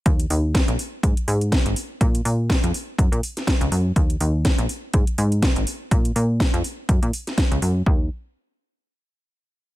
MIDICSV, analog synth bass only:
0, 0, Header, 1, 2, 480
1, 0, Start_track
1, 0, Tempo, 487805
1, 58, Time_signature, 4, 2, 24, 8
1, 9599, End_track
2, 0, Start_track
2, 0, Title_t, "Analog synth bass"
2, 0, Program_c, 0, 38
2, 57, Note_on_c, 0, 39, 103
2, 258, Note_off_c, 0, 39, 0
2, 299, Note_on_c, 0, 39, 91
2, 632, Note_off_c, 0, 39, 0
2, 670, Note_on_c, 0, 34, 95
2, 757, Note_off_c, 0, 34, 0
2, 1018, Note_on_c, 0, 44, 84
2, 1127, Note_off_c, 0, 44, 0
2, 1257, Note_on_c, 0, 44, 96
2, 1496, Note_on_c, 0, 48, 90
2, 1511, Note_off_c, 0, 44, 0
2, 1606, Note_off_c, 0, 48, 0
2, 1630, Note_on_c, 0, 32, 100
2, 1717, Note_off_c, 0, 32, 0
2, 1975, Note_on_c, 0, 46, 100
2, 2177, Note_off_c, 0, 46, 0
2, 2216, Note_on_c, 0, 46, 89
2, 2551, Note_off_c, 0, 46, 0
2, 2592, Note_on_c, 0, 41, 97
2, 2678, Note_off_c, 0, 41, 0
2, 2937, Note_on_c, 0, 42, 92
2, 3046, Note_off_c, 0, 42, 0
2, 3070, Note_on_c, 0, 46, 85
2, 3157, Note_off_c, 0, 46, 0
2, 3551, Note_on_c, 0, 37, 103
2, 3638, Note_off_c, 0, 37, 0
2, 3657, Note_on_c, 0, 42, 87
2, 3858, Note_off_c, 0, 42, 0
2, 3897, Note_on_c, 0, 39, 106
2, 4098, Note_off_c, 0, 39, 0
2, 4138, Note_on_c, 0, 39, 93
2, 4472, Note_off_c, 0, 39, 0
2, 4511, Note_on_c, 0, 34, 101
2, 4598, Note_off_c, 0, 34, 0
2, 4858, Note_on_c, 0, 44, 86
2, 4967, Note_off_c, 0, 44, 0
2, 5099, Note_on_c, 0, 44, 97
2, 5338, Note_on_c, 0, 48, 90
2, 5353, Note_off_c, 0, 44, 0
2, 5447, Note_off_c, 0, 48, 0
2, 5473, Note_on_c, 0, 32, 95
2, 5559, Note_off_c, 0, 32, 0
2, 5819, Note_on_c, 0, 46, 102
2, 6019, Note_off_c, 0, 46, 0
2, 6058, Note_on_c, 0, 46, 94
2, 6392, Note_off_c, 0, 46, 0
2, 6432, Note_on_c, 0, 41, 101
2, 6518, Note_off_c, 0, 41, 0
2, 6778, Note_on_c, 0, 42, 91
2, 6887, Note_off_c, 0, 42, 0
2, 6912, Note_on_c, 0, 46, 86
2, 6998, Note_off_c, 0, 46, 0
2, 7393, Note_on_c, 0, 37, 101
2, 7478, Note_off_c, 0, 37, 0
2, 7498, Note_on_c, 0, 42, 83
2, 7698, Note_off_c, 0, 42, 0
2, 7739, Note_on_c, 0, 39, 101
2, 7962, Note_off_c, 0, 39, 0
2, 9599, End_track
0, 0, End_of_file